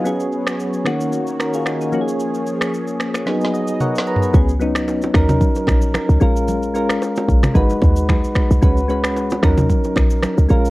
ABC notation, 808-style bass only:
X:1
M:4/4
L:1/16
Q:"Swing 16ths" 1/4=112
K:Ebm
V:1 name="808-style bass" clef=bass
z16 | z16 | D,,6 E,,3 z B,,,3 D,, B,,,2- | B,,,6 B,,,2 A,,,2 E,,3 A,,,2 C,, |
D,,6 E,,3 z B,,,3 D,, B,,,2 |]